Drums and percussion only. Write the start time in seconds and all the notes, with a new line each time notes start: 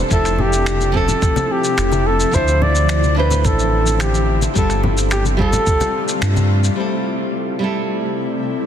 0.11 kick, shaker
0.25 finger snap, shaker
0.39 low conga
0.53 shaker
0.66 finger snap, shaker
0.81 high conga, shaker
0.94 kick
1.08 low conga, shaker
1.22 kick, shaker
1.36 muted conga, high conga, shaker
1.64 shaker
1.78 finger snap, shaker
1.92 muted conga, high conga, shaker
2.20 shaker
2.33 kick, shaker
2.48 shaker
2.62 low conga
2.75 shaker
2.89 finger snap, shaker
3.03 high conga, shaker
3.30 muted conga, low conga, shaker
3.45 kick, shaker
3.59 shaker
3.87 shaker
4.00 finger snap, shaker
4.15 shaker
4.42 muted conga, high conga, shaker
4.56 kick, shaker
4.70 finger snap, shaker
4.83 high conga, low conga
4.98 shaker
5.11 finger snap, shaker
5.25 high conga, shaker
5.39 kick
5.53 muted conga, low conga, shaker
5.67 kick, shaker
5.80 muted conga, high conga, shaker
6.09 shaker
6.22 finger snap, shaker
6.36 muted conga, high conga, shaker
6.64 shaker